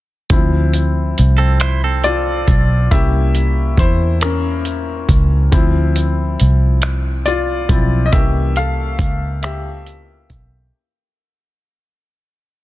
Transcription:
0.30 D2 F3 C4 E4, kick, closed hi-hat
0.73 closed hi-hat
1.18 C2, closed hi-hat
1.38 C4 A4
1.60 E4 C5, finger snap, closed hi-hat
1.84 C4 A4
2.04 F4 D5, closed hi-hat
2.48 B1, kick, closed hi-hat
2.91 C2 A#3 C#4 E4 G4 E5, kick, closed hi-hat
3.35 closed hi-hat
3.77 E2 E4 C5, kick, closed hi-hat
4.21 C#4 A#4, finger snap, closed hi-hat
4.65 closed hi-hat
5.09 C#2, kick, closed hi-hat
5.52 D2 F3 C4 E4, kick, closed hi-hat
5.96 closed hi-hat
6.40 C2, closed hi-hat
6.82 finger snap, closed hi-hat
7.26 F4 D5, closed hi-hat
7.69 B1 F3 C4 E4, kick, closed hi-hat
8.06 D#5
8.12 C2 E3 A#3 C#4 G4 E5, kick, closed hi-hat
8.56 A4 F5, closed hi-hat
8.99 C#2, kick, closed hi-hat
9.43 G4 E5, finger snap, closed hi-hat
9.86 closed hi-hat
10.30 B1, kick, closed hi-hat

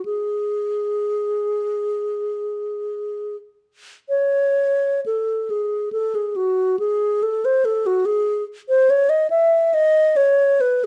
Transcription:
0.05 G#4
4.09 C#5
5.06 A4
5.50 G#4
5.92 A4
6.15 G#4
6.36 F#4
6.79 G#4
7.23 A4
7.45 C5
7.65 A4
7.86 F#4
8.05 G#4
8.69 C5
8.90 C#5
9.09 D#5
9.30 E5
9.74 D#5
10.16 C#5
10.61 B4

